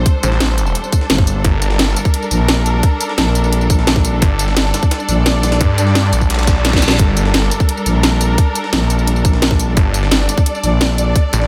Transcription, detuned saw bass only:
0.23 A1
1.45 G1
4.22 G1
5.61 G2
6.13 A#1
6.99 G1
9.77 G1
11.33 A1

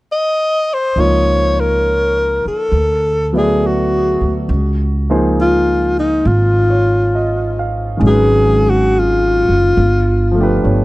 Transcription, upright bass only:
0.96 C#2
2.45 muted upright bass stroke
2.72 D2
4.21 D2
4.49 C#2
6.25 G#1
8.01 G#1
9.49 F#1
9.77 G1
10.64 G1

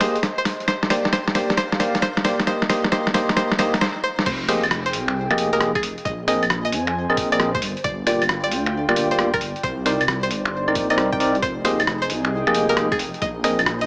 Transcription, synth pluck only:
0.00 C5
0.38 C5
0.68 C5
0.90 C5
1.13 C5
1.35 C5
1.57 C5
1.80 C5
2.02 C5
2.24 C5
2.47 C5
2.69 C5
2.92 C5
3.14 C5
3.36 C5
3.59 C5
3.81 C5
4.04 C5
4.26 C5
4.48 C5
4.86 C5
5.53 A#4
5.75 G#4
6.05 D#5
6.28 D#5
6.65 D#5
7.32 D5
7.55 C5
7.84 D5
8.07 D5
8.44 D5
9.11 C5
9.34 A#4
9.64 C5
9.86 C5
10.23 C5
10.90 D#5
11.12 G5
11.42 C5
11.65 C5
12.02 C5
12.69 A#4
12.92 G#4
13.22 D#5
13.44 D#5
13.81 D#5

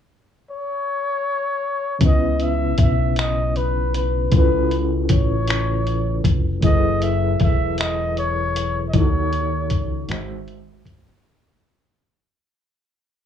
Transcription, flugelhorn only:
0.51 C#5
2.04 D#5
2.43 E5
2.81 E5
3.19 D#5
3.57 B4
3.96 B4
4.35 B4
5.11 C#5
6.65 D#5
7.03 E5
7.42 E5
7.80 D#5
8.19 C#5
8.89 D#5
8.96 C#5

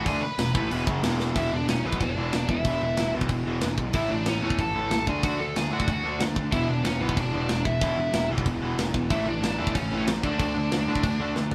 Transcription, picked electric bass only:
0.06 D2
0.22 muted picked electric bass stroke
0.38 E1
0.55 A1
0.70 E1
0.87 F#1
1.03 E1
1.36 E1
1.52 E1
1.68 E1
1.85 B1
2.00 E1
2.17 E1
2.33 E1
2.49 E1
2.65 E1
2.81 E1
2.98 E1
3.15 B1
3.29 E1
3.46 E1
3.62 E1
3.78 B1
3.94 A1
4.10 A1
4.27 A1
4.42 E2
4.58 A1
4.74 A1
4.90 A1
5.07 D2
5.23 D2
5.40 D2
5.56 D2
5.72 A2
5.88 D2
6.04 D2
6.21 D2
6.36 D2
6.53 E1
6.69 E1
6.84 E1
7.01 B1
7.17 E1
7.33 E1
7.50 E1
7.65 E1
7.81 E1
7.97 E1
8.13 E1
8.29 B1
8.45 E1
8.62 E1
8.77 E1
8.94 E1
9.10 A1
9.26 A1
9.42 A1
9.60 E2
9.76 A1
9.92 A1
10.08 A1
10.24 D2
10.40 D2
10.55 D2
10.72 D2
10.87 A2
11.04 D2
11.20 D2
11.35 D2
11.51 D2

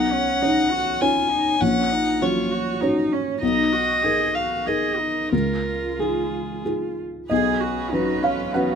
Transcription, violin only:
Already playing: F#5
1.01 G#5
1.61 F#5
2.22 C#5
3.41 D#5
4.35 F5
4.67 D#5
5.33 A#4
5.99 G#4
7.30 G#4
7.93 F#4
8.24 F4
8.55 D#4

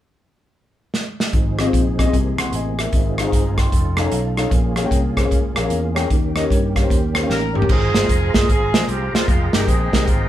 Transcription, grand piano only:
1.34 G#2
1.59 C4 F4 G#4 D#5
1.66 C4 F4 G#4 C5
1.98 C4 F4 G#4 D#5
2.05 C4 F4 G#4 D#5
2.12 C3
2.38 F#5 C6
2.55 D#5 G#5
2.80 A#4 E5
2.94 G#2
3.19 D#4 G#4 C5 F5
3.26 D#4 G#4 C5 F5
3.34 F5 A#5
3.58 G5 C6
3.98 D#4 A4 C#5 F5 G#5
4.05 D#4 A4 C#5 F5
4.13 F5
4.37 D#4 A4 C#5 F5
4.52 A#2
4.77 C#4 G#4 A#4 F5
4.84 C#4 G#4 A#4 G5
5.17 C#4 G#4 A#4 C5
5.23 C#4 G#4 A#4 F5
5.56 C#4 G#4 A#4 F5
5.63 C#4 G#4 A#4 F5
5.95 C#4 G#4 A#4 G5
6.10 D#3
6.36 C#4 G4 A#4 D#5
6.43 C#4 G4 A#4 C#5
6.75 C#4 G4 A#4 F5
6.82 C#4 G4 A#4 C5
7.14 C#4 G4 A#4 C5
7.22 C#4 G4 A#4 F5
7.54 C#4 G4 A#4 C#5
7.70 G#2
7.95 A#3 F4 G#4 C5
8.34 A#3 F4 G#4 C5
8.73 A#3 F4 G#4 C5
9.13 A#3 F4 G#4 C5
9.53 G#3 D#4 G4 A#4
9.92 G#3 D#4 G4 A#4

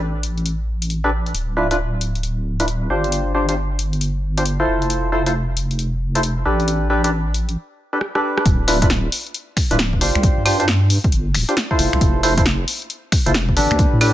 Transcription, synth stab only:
1.04 D4 G4 A4 B4
1.57 D4 E4 F4 B4
1.71 D4 E4 F4 B4
2.60 D4 E4 F4 B4
2.90 D4 F4 G4 C5
3.34 D4 F4 G4 C5
3.49 D4 F4 G4 C5
4.38 D4 F4 G4 C5
4.60 E4 F4 A4 C5
5.12 E4 F4 A4 C5
5.26 E4 F4 A4 C5
6.15 E4 F4 A4 C5
6.45 D4 G4 A4 B4
6.90 D4 G4 A4 B4
7.04 D4 G4 A4 B4
7.93 D4 G4 A4 B4
8.15 D4 G4 A4 B4
8.68 D4 E4 F4 B4
8.82 D4 E4 F4 B4
9.71 D4 E4 F4 B4
10.01 D4 F4 G4 C5
10.45 D4 F4 G4 C5
10.60 D4 F4 G4 C5
11.49 D4 F4 G4 C5
11.71 E4 F4 A4 C5
12.23 E4 F4 A4 C5
12.37 E4 F4 A4 C5
13.26 E4 F4 A4 C5
13.57 D4 G4 A4 B4
14.01 D4 G4 A4 B4

